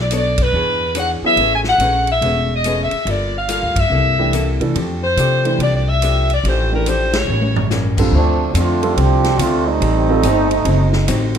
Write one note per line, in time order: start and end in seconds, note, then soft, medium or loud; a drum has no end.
0.00 0.49 B1 medium
0.00 0.12 D5 medium
0.11 0.41 B3 medium
0.11 0.41 D4 medium
0.11 0.41 A4 medium
0.11 0.41 C#5 medium
0.11 hi-hat pedal medium
0.11 ride medium
0.17 0.40 D5 medium
0.38 kick medium
0.38 ride medium
0.42 0.97 B4 medium
0.52 1.19 E2 medium
0.52 0.82 E3 soft
0.52 0.83 D4 soft
0.52 0.84 G#4 soft
0.52 0.84 C#5 medium
0.95 1.24 E3 medium
0.95 1.25 D4 medium
0.95 1.25 G#4 medium
0.95 1.25 C#5 medium
0.95 hi-hat pedal medium
0.95 ride medium
0.99 1.11 F#5 medium
1.22 1.37 F#3 medium
1.22 1.37 B3 medium
1.22 1.37 E4 medium
1.22 1.37 G#4 medium
1.22 muted upright bass stroke soft
1.26 1.52 E5 loud
1.36 1.76 A1 medium
1.36 1.67 A3 soft
1.36 1.68 C#4 soft
1.36 ride medium
1.41 1.68 G#4 soft
1.41 1.68 B4 soft
1.55 1.61 G#5 medium
1.64 snare medium
1.68 2.06 F#5 medium
1.78 2.18 A#1 medium
1.78 2.09 A3 medium
1.78 2.10 C#4 medium
1.78 2.10 G#4 medium
1.78 hi-hat pedal soft
1.78 ride medium
1.82 2.10 B4 medium
2.07 2.52 E5 loud
2.07 ride soft
2.21 2.87 E1 medium
2.21 2.51 A3 soft
2.21 2.52 C#4 soft
2.21 2.52 G#4 soft
2.21 2.52 B4 soft
2.21 ride medium
2.55 2.79 D#5 medium
2.64 2.94 A3 medium
2.64 2.94 C#4 medium
2.64 2.95 G#4 medium
2.64 2.95 B4 medium
2.64 hi-hat pedal medium
2.64 ride medium
2.82 3.09 E5 medium
2.91 muted upright bass stroke soft
2.91 ride soft
3.05 3.58 G1 medium
3.05 3.35 G3 soft
3.05 3.36 A#3 soft
3.05 3.36 F4 soft
3.05 ride medium
3.10 3.37 A4 soft
3.10 3.36 D5 medium
3.37 3.50 F5 medium
3.48 3.78 G3 medium
3.48 3.78 A#3 medium
3.48 3.78 F4 medium
3.48 3.78 A4 medium
3.48 3.76 F5 medium
3.48 hi-hat pedal medium
3.48 ride medium
3.63 3.76 D2 medium
3.76 3.90 G2 medium
3.76 4.62 E5 medium
3.76 kick medium
3.76 ride medium
3.90 4.56 C2 medium
3.90 4.20 C3 soft
3.90 4.20 A#3 soft
3.90 4.21 E4 soft
3.90 4.21 A4 medium
4.19 4.32 E3 medium
4.19 4.32 A3 medium
4.19 4.32 D4 medium
4.19 4.33 G4 medium
4.33 4.62 C3 medium
4.33 4.62 A#3 medium
4.33 4.63 E4 medium
4.33 4.63 A4 medium
4.33 hi-hat pedal medium
4.33 ride medium
4.60 4.74 C3 medium
4.60 4.74 E3 medium
4.60 4.74 A3 medium
4.60 4.74 D4 medium
4.60 4.75 A4 medium
4.60 ride soft
4.75 5.14 F2 medium
4.75 5.04 F3 medium
4.75 5.05 A3 soft
4.75 5.05 D4 medium
4.75 5.05 G4 medium
4.75 ride medium
5.04 5.56 C5 medium
5.17 5.56 C3 medium
5.17 5.46 F3 medium
5.17 5.47 A3 medium
5.17 5.47 D4 medium
5.17 5.47 G4 medium
5.17 hi-hat pedal medium
5.17 ride medium
5.45 5.58 E3 medium
5.45 5.58 A3 soft
5.45 5.59 D4 soft
5.45 5.59 G4 medium
5.45 ride soft
5.58 6.39 C2 medium
5.58 5.88 F3 soft
5.58 5.89 A3 soft
5.58 5.89 D4 medium
5.58 5.90 G4 medium
5.58 ride medium
5.62 5.74 D5 loud
5.75 5.88 D5 medium
5.89 6.30 E5 loud
6.02 6.31 F3 medium
6.02 6.31 A3 medium
6.02 6.32 D4 medium
6.02 6.32 G4 medium
6.02 hi-hat pedal medium
6.02 ride medium
6.30 6.45 D5 medium
6.30 ride soft
6.43 7.24 A1 medium
6.43 6.73 F3 soft
6.43 6.74 A3 soft
6.43 6.74 D4 medium
6.43 6.74 G4 medium
6.43 6.73 C5 medium
6.43 ride medium
6.72 6.85 E3 medium
6.72 6.85 A3 medium
6.72 6.85 D4 medium
6.72 6.86 G4 medium
6.72 6.87 A#4 medium
6.86 7.16 F3 medium
6.86 7.16 A3 medium
6.86 7.16 D4 medium
6.86 7.17 G4 medium
6.86 7.15 C5 medium
6.86 hi-hat pedal medium
6.86 ride medium
7.13 7.72 C#5 medium
7.13 snare medium
7.13 ride medium
7.28 8.08 A1 medium
7.28 7.57 A2 soft
7.28 7.58 G3 soft
7.28 7.58 A#3 soft
7.28 7.59 C#4 medium
7.42 high tom medium
7.56 floor tom medium
7.70 8.00 A2 medium
7.70 8.00 G3 medium
7.70 8.00 A#3 medium
7.70 8.01 C#4 medium
7.70 snare medium
7.70 hi-hat pedal medium
7.98 8.12 D3 medium
7.98 8.12 G3 medium
7.98 8.12 C4 medium
7.98 8.12 F4 medium
7.98 8.12 A4 medium
7.98 kick medium
7.98 crash medium
8.11 8.53 D2 medium
8.11 8.41 D3 soft
8.11 8.52 F3 medium
8.11 8.52 A3 medium
8.11 8.42 A3 soft
8.11 8.52 C4 medium
8.11 8.42 C4 soft
8.11 8.52 D4 medium
8.11 8.43 F4 medium
8.54 8.95 F2 medium
8.54 8.84 D3 medium
8.54 8.97 A3 medium
8.54 8.84 A3 medium
8.54 8.96 C4 medium
8.54 8.84 C4 medium
8.54 8.97 D4 medium
8.54 8.97 F4 medium
8.54 8.85 F4 medium
8.54 hi-hat pedal medium
8.54 ride medium
8.83 8.96 G3 medium
8.83 8.96 C4 medium
8.83 8.96 F4 medium
8.83 8.96 A4 medium
8.83 ride soft
8.96 9.37 C2 medium
8.96 9.25 D3 soft
8.96 9.39 F3 medium
8.96 9.26 A3 medium
8.96 9.39 C4 medium
8.96 9.26 C4 medium
8.96 9.39 D4 medium
8.96 9.27 F4 medium
8.96 9.39 G4 loud
8.96 ride medium
9.24 snare soft
9.24 ride soft
9.38 9.79 D2 medium
9.38 9.67 D3 medium
9.38 9.68 A3 medium
9.38 9.67 A3 medium
9.38 9.67 C4 medium
9.38 9.68 C4 medium
9.38 9.67 D4 medium
9.38 9.66 F4 medium
9.38 9.69 F4 medium
9.38 hi-hat pedal medium
9.38 ride medium
9.68 10.66 G3 medium
9.68 11.35 A3 medium
9.68 11.35 C4 medium
9.68 11.35 D#4 loud
9.80 10.21 A1 medium
9.80 10.10 A2 soft
9.80 10.11 G3 soft
9.80 10.11 C4 soft
9.80 10.11 D#4 medium
9.80 ride medium
10.09 10.22 G3 medium
10.09 10.22 C4 medium
10.09 10.22 F4 medium
10.09 10.23 A4 medium
10.23 10.64 G1 medium
10.23 10.52 A2 medium
10.23 10.53 G3 medium
10.23 10.53 C4 medium
10.23 10.53 D#4 medium
10.23 hi-hat pedal medium
10.23 ride medium
10.51 ride soft
10.65 11.06 F#1 medium
10.65 10.94 D3 medium
10.65 10.94 F#3 medium
10.65 10.94 C4 medium
10.65 10.95 D#4 medium
10.65 ride medium
10.93 snare soft
11.07 11.38 A1 medium
11.07 11.36 D3 medium
11.07 11.36 F#3 medium
11.07 11.36 C4 medium
11.07 11.37 D#4 medium
11.07 hi-hat pedal medium
11.07 ride medium
11.35 ride soft